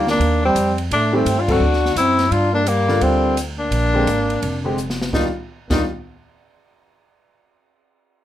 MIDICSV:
0, 0, Header, 1, 6, 480
1, 0, Start_track
1, 0, Key_signature, -3, "major"
1, 0, Tempo, 351083
1, 1241, Time_signature, 4, 2, 24, 8
1, 11273, End_track
2, 0, Start_track
2, 0, Title_t, "Tenor saxophone"
2, 0, Program_c, 0, 66
2, 137, Note_on_c, 0, 62, 89
2, 568, Note_off_c, 0, 62, 0
2, 617, Note_on_c, 0, 60, 88
2, 1048, Note_off_c, 0, 60, 0
2, 1268, Note_on_c, 0, 62, 90
2, 1573, Note_on_c, 0, 60, 91
2, 1594, Note_off_c, 0, 62, 0
2, 1911, Note_on_c, 0, 65, 76
2, 1931, Note_off_c, 0, 60, 0
2, 2073, Note_on_c, 0, 66, 90
2, 2093, Note_off_c, 0, 65, 0
2, 2690, Note_off_c, 0, 66, 0
2, 2698, Note_on_c, 0, 64, 96
2, 3170, Note_on_c, 0, 65, 99
2, 3191, Note_off_c, 0, 64, 0
2, 3469, Note_off_c, 0, 65, 0
2, 3477, Note_on_c, 0, 62, 82
2, 3661, Note_on_c, 0, 58, 92
2, 3682, Note_off_c, 0, 62, 0
2, 4135, Note_on_c, 0, 60, 90
2, 4155, Note_off_c, 0, 58, 0
2, 4608, Note_off_c, 0, 60, 0
2, 4905, Note_on_c, 0, 62, 92
2, 6467, Note_off_c, 0, 62, 0
2, 7025, Note_on_c, 0, 63, 69
2, 7183, Note_off_c, 0, 63, 0
2, 7806, Note_on_c, 0, 63, 77
2, 7960, Note_off_c, 0, 63, 0
2, 11273, End_track
3, 0, Start_track
3, 0, Title_t, "Trombone"
3, 0, Program_c, 1, 57
3, 117, Note_on_c, 1, 58, 82
3, 557, Note_off_c, 1, 58, 0
3, 613, Note_on_c, 1, 55, 80
3, 1046, Note_off_c, 1, 55, 0
3, 1264, Note_on_c, 1, 57, 81
3, 1564, Note_off_c, 1, 57, 0
3, 1564, Note_on_c, 1, 57, 75
3, 1904, Note_on_c, 1, 62, 58
3, 1924, Note_off_c, 1, 57, 0
3, 2040, Note_off_c, 1, 62, 0
3, 2040, Note_on_c, 1, 62, 82
3, 2678, Note_off_c, 1, 62, 0
3, 2686, Note_on_c, 1, 60, 83
3, 3159, Note_on_c, 1, 62, 83
3, 3180, Note_off_c, 1, 60, 0
3, 3445, Note_off_c, 1, 62, 0
3, 3453, Note_on_c, 1, 58, 73
3, 3639, Note_on_c, 1, 55, 74
3, 3660, Note_off_c, 1, 58, 0
3, 4111, Note_off_c, 1, 55, 0
3, 4111, Note_on_c, 1, 55, 77
3, 4596, Note_off_c, 1, 55, 0
3, 4905, Note_on_c, 1, 58, 76
3, 6467, Note_off_c, 1, 58, 0
3, 7005, Note_on_c, 1, 58, 62
3, 7173, Note_off_c, 1, 58, 0
3, 7786, Note_on_c, 1, 58, 65
3, 7950, Note_off_c, 1, 58, 0
3, 11273, End_track
4, 0, Start_track
4, 0, Title_t, "Upright piano"
4, 0, Program_c, 2, 0
4, 1537, Note_on_c, 2, 51, 72
4, 1543, Note_on_c, 2, 55, 61
4, 1547, Note_on_c, 2, 57, 66
4, 1556, Note_on_c, 2, 60, 66
4, 1557, Note_on_c, 2, 67, 85
4, 1700, Note_off_c, 2, 51, 0
4, 1703, Note_off_c, 2, 55, 0
4, 1705, Note_off_c, 2, 57, 0
4, 1709, Note_off_c, 2, 60, 0
4, 1709, Note_off_c, 2, 67, 0
4, 2022, Note_on_c, 2, 50, 68
4, 2032, Note_on_c, 2, 54, 63
4, 2038, Note_on_c, 2, 57, 65
4, 2044, Note_on_c, 2, 60, 65
4, 2050, Note_on_c, 2, 69, 79
4, 2182, Note_off_c, 2, 50, 0
4, 2187, Note_off_c, 2, 54, 0
4, 2190, Note_off_c, 2, 57, 0
4, 2193, Note_off_c, 2, 60, 0
4, 2196, Note_off_c, 2, 69, 0
4, 3941, Note_on_c, 2, 50, 70
4, 3945, Note_on_c, 2, 55, 62
4, 3951, Note_on_c, 2, 58, 61
4, 3964, Note_on_c, 2, 65, 75
4, 4564, Note_off_c, 2, 50, 0
4, 4566, Note_off_c, 2, 55, 0
4, 4569, Note_off_c, 2, 58, 0
4, 4575, Note_off_c, 2, 65, 0
4, 5382, Note_on_c, 2, 50, 65
4, 5388, Note_on_c, 2, 56, 66
4, 5401, Note_on_c, 2, 60, 65
4, 5411, Note_on_c, 2, 67, 75
4, 5542, Note_off_c, 2, 50, 0
4, 5545, Note_off_c, 2, 56, 0
4, 5551, Note_off_c, 2, 60, 0
4, 5557, Note_off_c, 2, 67, 0
4, 6347, Note_on_c, 2, 50, 60
4, 6359, Note_on_c, 2, 56, 56
4, 6364, Note_on_c, 2, 60, 59
4, 6372, Note_on_c, 2, 67, 65
4, 6505, Note_off_c, 2, 50, 0
4, 6511, Note_off_c, 2, 56, 0
4, 6513, Note_off_c, 2, 60, 0
4, 6517, Note_off_c, 2, 67, 0
4, 7022, Note_on_c, 2, 55, 58
4, 7023, Note_on_c, 2, 51, 59
4, 7032, Note_on_c, 2, 62, 53
4, 7038, Note_on_c, 2, 65, 69
4, 7194, Note_off_c, 2, 51, 0
4, 7194, Note_off_c, 2, 55, 0
4, 7199, Note_off_c, 2, 62, 0
4, 7202, Note_off_c, 2, 65, 0
4, 7803, Note_on_c, 2, 51, 64
4, 7804, Note_on_c, 2, 55, 59
4, 7808, Note_on_c, 2, 62, 59
4, 7811, Note_on_c, 2, 65, 71
4, 7953, Note_off_c, 2, 51, 0
4, 7954, Note_off_c, 2, 55, 0
4, 7955, Note_off_c, 2, 62, 0
4, 7957, Note_off_c, 2, 65, 0
4, 11273, End_track
5, 0, Start_track
5, 0, Title_t, "Upright bass"
5, 0, Program_c, 3, 32
5, 0, Note_on_c, 3, 38, 92
5, 259, Note_off_c, 3, 38, 0
5, 267, Note_on_c, 3, 39, 80
5, 739, Note_off_c, 3, 39, 0
5, 754, Note_on_c, 3, 41, 91
5, 1223, Note_off_c, 3, 41, 0
5, 1245, Note_on_c, 3, 45, 84
5, 1708, Note_off_c, 3, 45, 0
5, 1718, Note_on_c, 3, 43, 83
5, 2181, Note_off_c, 3, 43, 0
5, 2189, Note_on_c, 3, 38, 76
5, 2660, Note_off_c, 3, 38, 0
5, 2676, Note_on_c, 3, 42, 86
5, 3144, Note_off_c, 3, 42, 0
5, 3156, Note_on_c, 3, 43, 82
5, 4070, Note_off_c, 3, 43, 0
5, 4116, Note_on_c, 3, 38, 75
5, 5030, Note_off_c, 3, 38, 0
5, 5071, Note_on_c, 3, 34, 88
5, 5522, Note_off_c, 3, 34, 0
5, 5552, Note_on_c, 3, 32, 70
5, 6003, Note_off_c, 3, 32, 0
5, 6045, Note_on_c, 3, 29, 76
5, 6956, Note_off_c, 3, 29, 0
5, 7013, Note_on_c, 3, 39, 81
5, 7177, Note_off_c, 3, 39, 0
5, 7793, Note_on_c, 3, 39, 84
5, 7954, Note_off_c, 3, 39, 0
5, 11273, End_track
6, 0, Start_track
6, 0, Title_t, "Drums"
6, 102, Note_on_c, 9, 38, 56
6, 239, Note_off_c, 9, 38, 0
6, 281, Note_on_c, 9, 51, 60
6, 418, Note_off_c, 9, 51, 0
6, 762, Note_on_c, 9, 44, 60
6, 762, Note_on_c, 9, 51, 73
6, 899, Note_off_c, 9, 44, 0
6, 899, Note_off_c, 9, 51, 0
6, 1067, Note_on_c, 9, 51, 46
6, 1203, Note_off_c, 9, 51, 0
6, 1248, Note_on_c, 9, 51, 65
6, 1385, Note_off_c, 9, 51, 0
6, 1725, Note_on_c, 9, 44, 53
6, 1725, Note_on_c, 9, 51, 72
6, 1862, Note_off_c, 9, 44, 0
6, 1862, Note_off_c, 9, 51, 0
6, 2027, Note_on_c, 9, 49, 76
6, 2028, Note_on_c, 9, 36, 85
6, 2164, Note_off_c, 9, 49, 0
6, 2165, Note_off_c, 9, 36, 0
6, 2370, Note_on_c, 9, 38, 28
6, 2507, Note_off_c, 9, 38, 0
6, 2534, Note_on_c, 9, 38, 43
6, 2671, Note_off_c, 9, 38, 0
6, 2685, Note_on_c, 9, 44, 62
6, 2685, Note_on_c, 9, 51, 70
6, 2822, Note_off_c, 9, 44, 0
6, 2822, Note_off_c, 9, 51, 0
6, 2990, Note_on_c, 9, 38, 42
6, 2990, Note_on_c, 9, 51, 43
6, 3126, Note_off_c, 9, 38, 0
6, 3126, Note_off_c, 9, 51, 0
6, 3169, Note_on_c, 9, 51, 57
6, 3306, Note_off_c, 9, 51, 0
6, 3642, Note_on_c, 9, 44, 49
6, 3642, Note_on_c, 9, 51, 63
6, 3779, Note_off_c, 9, 44, 0
6, 3779, Note_off_c, 9, 51, 0
6, 3947, Note_on_c, 9, 38, 34
6, 4083, Note_off_c, 9, 38, 0
6, 4119, Note_on_c, 9, 51, 56
6, 4256, Note_off_c, 9, 51, 0
6, 4609, Note_on_c, 9, 44, 57
6, 4609, Note_on_c, 9, 51, 69
6, 4745, Note_off_c, 9, 44, 0
6, 4745, Note_off_c, 9, 51, 0
6, 5082, Note_on_c, 9, 51, 62
6, 5219, Note_off_c, 9, 51, 0
6, 5566, Note_on_c, 9, 44, 45
6, 5566, Note_on_c, 9, 51, 61
6, 5703, Note_off_c, 9, 44, 0
6, 5703, Note_off_c, 9, 51, 0
6, 5877, Note_on_c, 9, 51, 42
6, 6014, Note_off_c, 9, 51, 0
6, 6049, Note_on_c, 9, 51, 59
6, 6185, Note_off_c, 9, 51, 0
6, 6533, Note_on_c, 9, 44, 59
6, 6670, Note_off_c, 9, 44, 0
6, 6698, Note_on_c, 9, 38, 55
6, 6835, Note_off_c, 9, 38, 0
6, 6857, Note_on_c, 9, 38, 66
6, 6993, Note_off_c, 9, 38, 0
6, 7016, Note_on_c, 9, 36, 90
6, 7022, Note_on_c, 9, 38, 74
6, 7152, Note_off_c, 9, 36, 0
6, 7159, Note_off_c, 9, 38, 0
6, 7798, Note_on_c, 9, 36, 83
6, 7800, Note_on_c, 9, 38, 76
6, 7800, Note_on_c, 9, 49, 72
6, 7935, Note_off_c, 9, 36, 0
6, 7936, Note_off_c, 9, 38, 0
6, 7936, Note_off_c, 9, 49, 0
6, 11273, End_track
0, 0, End_of_file